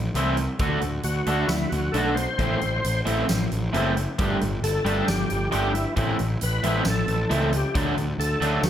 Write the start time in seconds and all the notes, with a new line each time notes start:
0.14 C2 A2 E3 A3 C4 E4, closed hi-hat
0.37 closed hi-hat
0.59 D2 D3 A3 D4 F#4, kick, closed hi-hat
0.81 D2, closed hi-hat
1.03 D2 F#4, closed hi-hat
1.26 D2 D3 A3 D4 F#4, closed hi-hat
1.47 D2 E4, snare, closed hi-hat, tambourine
1.69 D2 F#4, closed hi-hat
1.92 B1 D3 A3 D4 A4, closed hi-hat
1.96 F#4
2.15 C5, closed hi-hat
2.39 A1 A2 E3 A3 C4 E4, kick, closed hi-hat
2.61 A1, closed hi-hat
2.84 A1, closed hi-hat
3.05 A1 A2 E3 A3 C4 E4, closed hi-hat
3.29 A1, snare, closed hi-hat, tambourine
3.52 A1, closed hi-hat
3.73 F#1 A2 E3 A3 C4 E4, closed hi-hat
3.97 closed hi-hat
4.18 G1 G3 A3 D4 G4, kick, closed hi-hat
4.41 G1, closed hi-hat
4.62 G1 A4, closed hi-hat
4.85 G1 G3 A3 D4 G4, closed hi-hat
5.08 G1 G4, snare, closed hi-hat, tambourine
5.30 G1, closed hi-hat
5.51 G1 G3 A3 D4 G4, closed hi-hat
5.74 E4, closed hi-hat
5.96 A1 A2 E3 A3 C4 E4, kick, closed hi-hat
6.19 A1, closed hi-hat
6.41 A1 B4, closed hi-hat
6.63 A1 A2 E3 A3 C4 E4, closed hi-hat
6.85 A1 A4, snare, closed hi-hat, tambourine
7.08 A1, closed hi-hat
7.30 C#2 A2 E3 A3 C4 E4 A4, closed hi-hat
7.53 closed hi-hat
7.57 G4
7.75 D2 D3 F#3 A3 D4, kick, closed hi-hat
7.97 D2, closed hi-hat
8.18 D2 A4, closed hi-hat
8.41 D2 D3 F#3 A3 D4, closed hi-hat
8.63 D2 F#4, snare, closed hi-hat, tambourine